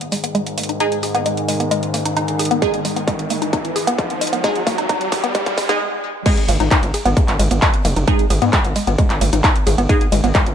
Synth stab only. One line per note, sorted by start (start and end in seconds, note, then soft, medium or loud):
0.80 0.98 G#3 loud
0.80 0.98 D#4 medium
0.80 0.98 G#4 loud
2.62 2.80 G#3 medium
2.62 2.80 D#4 medium
2.62 2.80 G#4 loud
4.44 4.62 G#3 loud
4.44 4.62 D#4 medium
4.44 4.62 G#4 loud
5.69 5.80 G#3 loud
5.69 5.80 D#4 medium
5.69 5.80 G#4 loud
6.26 6.43 G#3 loud
6.26 6.43 D#4 medium
6.26 6.43 G#4 loud
8.08 8.25 G#3 loud
8.08 8.25 D#4 medium
8.08 8.25 G#4 loud
9.89 10.07 G#3 loud
9.89 10.07 D#4 medium
9.89 10.07 G#4 loud